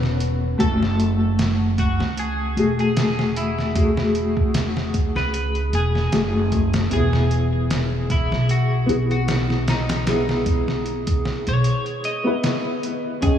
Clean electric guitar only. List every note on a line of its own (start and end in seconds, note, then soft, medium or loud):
0.60 1.14 A4 medium
1.79 2.15 F#4 medium
2.19 2.73 G#4 medium
2.80 3.31 G#4 medium
3.37 3.91 E4 medium
5.16 5.68 B4 medium
5.75 6.78 G#4 medium
6.93 7.47 G#4 medium
8.11 8.46 E4 medium
8.51 9.05 F#4 medium
9.11 9.63 F#4 medium
9.69 10.23 D#4 medium
11.49 12.00 C#5 medium
12.05 13.09 D#5 medium
13.23 13.38 G#4 medium